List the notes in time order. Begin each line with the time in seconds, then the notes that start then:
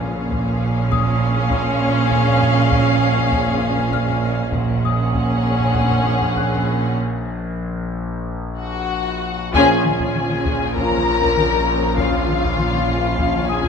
Already playing: A#1 A#2 C#4 G#4 F5
0.31 taiko
0.91 D#6, taiko
1.50 taiko
2.11 taiko
2.42 taiko low
2.72 taiko
3.17 taiko low
3.32 taiko
3.47 taiko low
3.62 taiko low
3.77 taiko low
3.92 F6, taiko
4.08 taiko low
4.53 A#1 A#2 C#4 G#4 F#5, taiko
4.84 D#6, taiko low
5.14 taiko
5.60 taiko low
5.75 taiko
5.91 taiko low
6.06 taiko low
6.22 taiko low
6.37 F#6, taiko
6.52 taiko low
8.59 F#4 F#5
9.53 A#1 A#2 F3 C#4 F4 G#4 G#5, taiko
9.85 taiko mid
10.00 taiko
10.15 G#5 G#6, taiko mid
10.30 taiko mid
10.46 taiko
10.76 F3 C#4 A#4 A#5, taiko
10.92 taiko mid
11.22 taiko
11.37 taiko mid
11.98 F3 C#4 F4 F5, taiko
12.28 taiko mid
12.43 taiko
12.58 taiko mid
12.73 taiko mid
12.89 taiko
13.19 F3 C#4, taiko
13.34 taiko mid
13.49 G#4 G#5 D#6
13.64 taiko